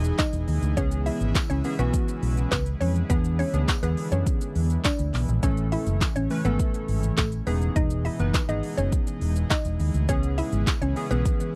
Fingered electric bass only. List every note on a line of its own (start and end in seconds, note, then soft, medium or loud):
0.00 0.11 E1 medium
0.33 0.44 E1 medium
0.48 0.58 D#2 loud
0.63 0.73 D2 medium
0.77 1.08 C#2 loud
1.21 1.31 G#1 medium
1.50 1.60 C#2 medium
1.79 1.90 B1 loud
2.23 2.44 B1 medium
2.52 2.73 C#2 loud
2.81 3.02 F2 loud
3.10 3.41 E2 loud
3.54 3.64 D2 medium
3.83 3.93 E2 medium
4.12 4.22 F#2 loud
4.56 4.77 E2 medium
4.99 5.10 D2 loud
5.14 5.24 B1 loud
5.29 5.39 A#1 medium
5.43 5.74 A1 loud
5.87 5.97 F#1 loud
6.16 6.26 A1 medium
6.45 6.55 G#1 medium
6.89 7.10 G#1 medium
7.18 7.39 A1 medium
7.47 7.68 E1 loud
7.76 8.07 E1 loud
8.20 8.30 F#1 loud
8.49 8.59 G#1 medium
8.78 8.88 F#1 medium
9.22 9.43 E1 medium
9.65 9.76 E1 medium
9.80 9.90 D#2 loud
9.94 10.05 D2 medium
10.09 10.40 C#2 loud
10.53 10.63 G#1 medium
10.82 10.92 C#2 medium
11.11 11.21 B1 loud